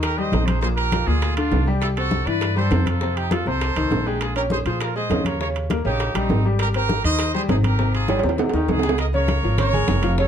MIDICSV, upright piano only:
0, 0, Header, 1, 2, 480
1, 0, Start_track
1, 0, Key_signature, -4, "major"
1, 0, Tempo, 298507
1, 1005, Time_signature, 4, 2, 24, 8
1, 16525, End_track
2, 0, Start_track
2, 0, Title_t, "Upright piano"
2, 0, Program_c, 0, 0
2, 0, Note_on_c, 0, 51, 72
2, 0, Note_on_c, 0, 63, 65
2, 202, Note_off_c, 0, 51, 0
2, 206, Note_off_c, 0, 63, 0
2, 293, Note_on_c, 0, 55, 73
2, 298, Note_on_c, 0, 67, 75
2, 487, Note_off_c, 0, 55, 0
2, 489, Note_off_c, 0, 67, 0
2, 540, Note_on_c, 0, 48, 73
2, 551, Note_on_c, 0, 60, 68
2, 928, Note_off_c, 0, 48, 0
2, 935, Note_off_c, 0, 60, 0
2, 1007, Note_on_c, 0, 46, 67
2, 1013, Note_on_c, 0, 58, 74
2, 1401, Note_off_c, 0, 46, 0
2, 1404, Note_off_c, 0, 58, 0
2, 1494, Note_on_c, 0, 53, 62
2, 1500, Note_on_c, 0, 65, 67
2, 1688, Note_off_c, 0, 53, 0
2, 1691, Note_off_c, 0, 65, 0
2, 1716, Note_on_c, 0, 46, 79
2, 1725, Note_on_c, 0, 58, 84
2, 2114, Note_off_c, 0, 46, 0
2, 2120, Note_off_c, 0, 58, 0
2, 2209, Note_on_c, 0, 50, 70
2, 2213, Note_on_c, 0, 62, 74
2, 2602, Note_off_c, 0, 50, 0
2, 2604, Note_off_c, 0, 62, 0
2, 2691, Note_on_c, 0, 55, 83
2, 2698, Note_on_c, 0, 67, 81
2, 3083, Note_off_c, 0, 55, 0
2, 3087, Note_off_c, 0, 67, 0
2, 3171, Note_on_c, 0, 60, 75
2, 3172, Note_on_c, 0, 72, 68
2, 3563, Note_off_c, 0, 60, 0
2, 3564, Note_off_c, 0, 72, 0
2, 3636, Note_on_c, 0, 52, 66
2, 3644, Note_on_c, 0, 64, 70
2, 4034, Note_off_c, 0, 52, 0
2, 4039, Note_off_c, 0, 64, 0
2, 4126, Note_on_c, 0, 55, 78
2, 4130, Note_on_c, 0, 67, 73
2, 4324, Note_off_c, 0, 55, 0
2, 4326, Note_off_c, 0, 67, 0
2, 4376, Note_on_c, 0, 48, 65
2, 4380, Note_on_c, 0, 60, 70
2, 4766, Note_off_c, 0, 48, 0
2, 4769, Note_off_c, 0, 60, 0
2, 4859, Note_on_c, 0, 48, 65
2, 4865, Note_on_c, 0, 60, 70
2, 5248, Note_off_c, 0, 48, 0
2, 5252, Note_off_c, 0, 60, 0
2, 5343, Note_on_c, 0, 53, 67
2, 5345, Note_on_c, 0, 65, 73
2, 5534, Note_off_c, 0, 53, 0
2, 5535, Note_off_c, 0, 65, 0
2, 5577, Note_on_c, 0, 48, 85
2, 5582, Note_on_c, 0, 60, 83
2, 5967, Note_off_c, 0, 48, 0
2, 5970, Note_off_c, 0, 60, 0
2, 6052, Note_on_c, 0, 51, 71
2, 6055, Note_on_c, 0, 63, 74
2, 6444, Note_off_c, 0, 51, 0
2, 6446, Note_off_c, 0, 63, 0
2, 6538, Note_on_c, 0, 56, 78
2, 6545, Note_on_c, 0, 68, 78
2, 6928, Note_off_c, 0, 56, 0
2, 6932, Note_off_c, 0, 68, 0
2, 7013, Note_on_c, 0, 61, 62
2, 7016, Note_on_c, 0, 73, 68
2, 7405, Note_off_c, 0, 61, 0
2, 7407, Note_off_c, 0, 73, 0
2, 7492, Note_on_c, 0, 53, 68
2, 7495, Note_on_c, 0, 65, 71
2, 7885, Note_off_c, 0, 53, 0
2, 7887, Note_off_c, 0, 65, 0
2, 7967, Note_on_c, 0, 56, 68
2, 7972, Note_on_c, 0, 68, 76
2, 8165, Note_off_c, 0, 56, 0
2, 8168, Note_off_c, 0, 68, 0
2, 8204, Note_on_c, 0, 49, 71
2, 8208, Note_on_c, 0, 61, 64
2, 8600, Note_off_c, 0, 49, 0
2, 8602, Note_off_c, 0, 61, 0
2, 8692, Note_on_c, 0, 49, 67
2, 8698, Note_on_c, 0, 61, 67
2, 9084, Note_off_c, 0, 49, 0
2, 9088, Note_off_c, 0, 61, 0
2, 9173, Note_on_c, 0, 58, 71
2, 9176, Note_on_c, 0, 70, 70
2, 9369, Note_off_c, 0, 58, 0
2, 9370, Note_off_c, 0, 70, 0
2, 9404, Note_on_c, 0, 49, 78
2, 9410, Note_on_c, 0, 61, 80
2, 9800, Note_off_c, 0, 49, 0
2, 9804, Note_off_c, 0, 61, 0
2, 9888, Note_on_c, 0, 55, 75
2, 9895, Note_on_c, 0, 67, 80
2, 10283, Note_off_c, 0, 55, 0
2, 10286, Note_off_c, 0, 67, 0
2, 10378, Note_on_c, 0, 55, 76
2, 10384, Note_on_c, 0, 67, 78
2, 10768, Note_off_c, 0, 55, 0
2, 10772, Note_off_c, 0, 67, 0
2, 10865, Note_on_c, 0, 60, 68
2, 10868, Note_on_c, 0, 72, 70
2, 11252, Note_off_c, 0, 60, 0
2, 11254, Note_off_c, 0, 72, 0
2, 11333, Note_on_c, 0, 51, 70
2, 11337, Note_on_c, 0, 63, 77
2, 11725, Note_off_c, 0, 51, 0
2, 11728, Note_off_c, 0, 63, 0
2, 11813, Note_on_c, 0, 55, 77
2, 11816, Note_on_c, 0, 67, 75
2, 12008, Note_off_c, 0, 55, 0
2, 12010, Note_off_c, 0, 67, 0
2, 12045, Note_on_c, 0, 48, 73
2, 12048, Note_on_c, 0, 60, 65
2, 12440, Note_off_c, 0, 48, 0
2, 12442, Note_off_c, 0, 60, 0
2, 12526, Note_on_c, 0, 48, 75
2, 12527, Note_on_c, 0, 60, 64
2, 12921, Note_off_c, 0, 48, 0
2, 12922, Note_off_c, 0, 60, 0
2, 13005, Note_on_c, 0, 55, 66
2, 13008, Note_on_c, 0, 67, 68
2, 13204, Note_off_c, 0, 55, 0
2, 13205, Note_off_c, 0, 67, 0
2, 13248, Note_on_c, 0, 48, 76
2, 13251, Note_on_c, 0, 60, 80
2, 13642, Note_off_c, 0, 48, 0
2, 13644, Note_off_c, 0, 60, 0
2, 13728, Note_on_c, 0, 51, 76
2, 13732, Note_on_c, 0, 63, 68
2, 14122, Note_off_c, 0, 51, 0
2, 14124, Note_off_c, 0, 63, 0
2, 14207, Note_on_c, 0, 56, 74
2, 14212, Note_on_c, 0, 68, 74
2, 14405, Note_off_c, 0, 56, 0
2, 14408, Note_off_c, 0, 68, 0
2, 14694, Note_on_c, 0, 49, 76
2, 14699, Note_on_c, 0, 61, 76
2, 14701, Note_on_c, 0, 73, 79
2, 15085, Note_off_c, 0, 49, 0
2, 15088, Note_off_c, 0, 61, 0
2, 15089, Note_off_c, 0, 73, 0
2, 15173, Note_on_c, 0, 53, 73
2, 15181, Note_on_c, 0, 65, 67
2, 15184, Note_on_c, 0, 77, 78
2, 15368, Note_off_c, 0, 53, 0
2, 15373, Note_off_c, 0, 65, 0
2, 15374, Note_off_c, 0, 77, 0
2, 15414, Note_on_c, 0, 61, 73
2, 15420, Note_on_c, 0, 73, 67
2, 15425, Note_on_c, 0, 85, 73
2, 15608, Note_off_c, 0, 61, 0
2, 15612, Note_off_c, 0, 73, 0
2, 15615, Note_off_c, 0, 85, 0
2, 15647, Note_on_c, 0, 56, 77
2, 15654, Note_on_c, 0, 68, 80
2, 15657, Note_on_c, 0, 80, 80
2, 16041, Note_off_c, 0, 56, 0
2, 16045, Note_off_c, 0, 68, 0
2, 16047, Note_off_c, 0, 80, 0
2, 16125, Note_on_c, 0, 53, 81
2, 16133, Note_on_c, 0, 65, 81
2, 16140, Note_on_c, 0, 77, 80
2, 16323, Note_off_c, 0, 53, 0
2, 16328, Note_off_c, 0, 65, 0
2, 16332, Note_off_c, 0, 77, 0
2, 16373, Note_on_c, 0, 49, 77
2, 16379, Note_on_c, 0, 61, 76
2, 16382, Note_on_c, 0, 73, 85
2, 16525, Note_off_c, 0, 49, 0
2, 16525, Note_off_c, 0, 61, 0
2, 16525, Note_off_c, 0, 73, 0
2, 16525, End_track
0, 0, End_of_file